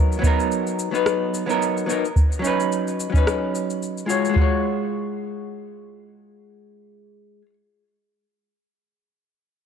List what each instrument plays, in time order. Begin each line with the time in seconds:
Already playing: hollow-body jazz guitar F#3 B3 D#4 A#4
0.12 cabasa
0.19 hollow-body jazz guitar F#3 B3
0.23 hollow-body jazz guitar D#4 A#4, kick, cabasa
0.40 cabasa
0.52 cabasa
0.67 cabasa
0.79 cabasa
0.91 hollow-body jazz guitar F#3 B3 D#4 B4, cabasa
1.06 cross-stick, cabasa
1.34 cabasa
1.46 hollow-body jazz guitar F#3 B3 D#4, cabasa
1.50 hollow-body jazz guitar A#4
1.62 cabasa
1.77 cabasa
1.86 hollow-body jazz guitar F#3 B3 D#4, cabasa
1.90 hollow-body jazz guitar A#4
2.05 cabasa
2.16 kick, cabasa
2.32 cabasa
2.39 hollow-body jazz guitar F#3 C#4
2.44 hollow-body jazz guitar D#4 B4, cabasa
2.60 cabasa
2.72 cabasa
2.88 cabasa
3.00 cabasa
3.10 hollow-body jazz guitar F#3 C#4
3.14 hollow-body jazz guitar D#4 B4, kick, cabasa
3.27 cross-stick, cabasa
3.55 cabasa
3.70 cabasa
3.82 cabasa
3.98 cabasa
4.06 hollow-body jazz guitar G#3 F4 F#4, cabasa
4.10 hollow-body jazz guitar C#5
4.25 cabasa
4.29 hollow-body jazz guitar G#3
4.34 hollow-body jazz guitar F4 F#4, kick
4.41 hollow-body jazz guitar C#5